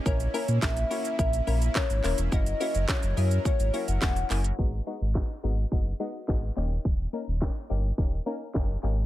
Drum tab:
CC |----------------|----------------|x---------------|----------------|
HH |-xox-xox-xox-xox|-xox-xox-xox-xox|---x-x-x-x-x-x-x|-x-x-x-x-x-x-x-x|
SH |xxxxxxxxxxxxxxxx|xxxxxxxxxxxxxxxx|----------------|----------------|
CP |----x-------x-x-|----x-------x-x-|----x-------x-x-|----x-------x-x-|
SD |----o-------o---|----o-------o---|----o-------o---|----o-------o---|
BD |o---o---o---o---|o---o---o---o---|o---o---o---o---|o---o---o---o---|